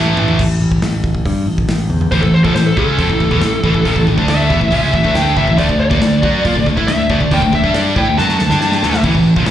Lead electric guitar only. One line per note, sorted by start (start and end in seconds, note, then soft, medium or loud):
2.12 2.22 C5 medium
2.22 2.34 A4 medium
2.34 2.44 C5 medium
2.44 2.54 A4 medium
2.55 2.66 C5 medium
2.66 2.77 A4 medium
2.78 4.04 A4 medium
4.30 4.92 E5 loud
4.95 5.15 E5 medium
5.15 5.36 G5 medium
5.37 5.58 E5 medium
5.58 5.79 D5 medium
5.81 6.64 D5 loud
6.88 7.09 E5 loud
7.11 7.31 D5 medium
7.34 7.54 G5 medium
7.55 7.75 E5 medium
7.75 7.96 D5 medium
7.98 8.18 G5 medium
8.19 9.02 A5 loud